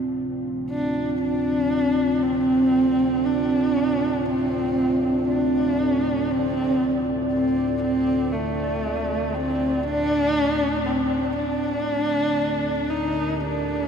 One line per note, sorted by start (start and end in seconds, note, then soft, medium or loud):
0.00 13.88 D2 medium
0.00 13.88 A2 medium
0.00 12.75 C4 medium
0.00 11.36 F4 medium
0.00 13.88 D5 medium
0.70 1.17 D4 medium
1.21 2.24 D4 medium
2.23 3.26 C4 medium
3.25 4.27 D4 medium
4.25 5.27 C4 medium
5.28 6.32 D4 medium
6.30 7.05 C4 medium
7.32 7.78 C4 medium
7.83 8.33 C4 medium
8.32 9.35 A3 medium
9.34 9.85 C4 medium
9.83 10.87 D4 loud
10.86 11.35 C4 medium
11.36 12.91 D4 loud
12.90 13.42 D#4 medium
12.90 13.88 A#4 medium
12.95 13.88 G4 medium
13.40 13.88 D4 medium